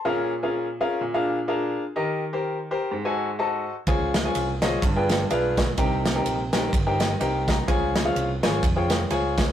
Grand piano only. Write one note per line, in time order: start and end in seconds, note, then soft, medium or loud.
0.00 0.30 C6 medium
0.05 0.76 A#2 medium
0.05 0.32 C#4 medium
0.05 0.32 F4 medium
0.05 0.32 G#4 medium
0.05 0.32 A#4 medium
0.05 0.32 F5 loud
0.43 0.66 C#4 medium
0.43 0.66 F4 medium
0.43 0.66 G#4 medium
0.43 0.66 A#4 medium
0.43 0.66 F5 medium
0.81 1.00 C#4 medium
0.81 1.00 F4 medium
0.81 1.00 G#4 medium
0.81 1.01 A#4 medium
0.81 1.01 F5 loud
1.01 1.72 A#2 medium
1.14 1.38 D4 medium
1.14 1.38 F4 medium
1.14 1.38 G#4 medium
1.14 1.38 A#4 medium
1.14 1.38 F5 loud
1.48 1.82 D4 medium
1.48 1.82 F4 medium
1.48 1.82 G#4 medium
1.48 1.82 A#4 medium
1.48 1.82 F5 loud
1.96 2.67 D#3 medium
1.96 2.23 G4 medium
1.96 2.23 A#4 medium
1.96 2.23 D#5 loud
2.33 2.57 G4 medium
2.33 2.57 A#4 medium
2.33 2.57 C5 medium
2.71 2.91 G4 medium
2.71 2.91 A#4 medium
2.71 2.91 C5 loud
2.91 3.63 G#2 medium
3.05 3.29 F#4 medium
3.05 3.29 A4 medium
3.05 3.29 C5 medium
3.05 3.29 D#5 medium
3.05 3.29 G#5 medium
3.39 3.73 F#4 medium
3.39 3.73 A4 medium
3.39 3.73 C5 medium
3.39 3.73 D#5 medium
3.39 3.73 A5 loud
3.87 4.59 C#3 medium
3.87 4.14 F4 medium
3.87 4.14 G#4 medium
3.87 4.14 C5 medium
3.87 4.14 C#5 medium
3.87 4.14 G#5 medium
4.25 4.48 F4 medium
4.25 4.48 G#4 medium
4.25 4.48 C5 medium
4.25 4.48 C#5 medium
4.25 4.48 G#5 medium
4.62 4.82 F4 medium
4.62 4.82 G#4 medium
4.62 4.82 C5 medium
4.62 4.82 C#5 medium
4.62 4.83 D#5 loud
4.83 5.54 G2 medium
4.96 5.20 F4 medium
4.96 5.20 G#4 medium
4.96 5.20 B4 medium
4.96 5.20 D5 medium
4.96 5.20 G5 loud
5.31 5.64 F4 medium
5.31 5.64 G#4 medium
5.31 5.64 B4 medium
5.31 5.64 D5 medium
5.31 5.64 F5 loud
5.78 6.49 C3 medium
5.78 6.05 D#4 medium
5.78 6.05 G4 medium
5.78 6.05 A#4 medium
5.78 6.05 C5 medium
5.78 6.05 G5 loud
6.15 6.39 D#4 medium
6.15 6.39 G4 medium
6.15 6.39 A#4 medium
6.15 6.39 C5 medium
6.15 6.39 G5 medium
6.53 6.73 D#4 medium
6.53 6.73 G4 medium
6.53 6.73 A#4 medium
6.53 6.73 C5 medium
6.53 6.73 G5 loud
6.87 7.10 D#4 medium
6.87 7.10 G4 medium
6.87 7.10 A#4 medium
6.87 7.10 C5 medium
6.87 7.10 G5 loud
7.00 7.19 D#5 medium
7.20 7.54 D#4 medium
7.20 7.54 G4 medium
7.20 7.54 A#4 medium
7.20 7.54 C5 medium
7.20 7.54 G5 loud
7.48 7.67 A#5 medium
7.68 8.39 C#3 medium
7.68 7.95 F4 loud
7.68 7.95 G#4 medium
7.68 7.95 C5 medium
7.68 7.95 C#5 medium
7.68 7.95 G#5 loud
8.05 8.28 F4 medium
8.05 8.28 G#4 medium
8.05 8.29 C5 medium
8.05 8.29 C#5 medium
8.05 8.29 F5 medium
8.43 8.63 F4 medium
8.43 8.63 G#4 medium
8.43 8.63 C5 medium
8.43 8.63 C#5 medium
8.43 8.63 G#5 loud
8.76 9.00 F4 medium
8.76 9.00 G#4 medium
8.76 9.00 C5 medium
8.76 9.00 C#5 medium
8.76 9.00 G5 medium
9.11 9.44 F4 medium
9.11 9.44 G#4 medium
9.11 9.44 C5 medium
9.11 9.44 C#5 medium
9.11 9.44 G#5 loud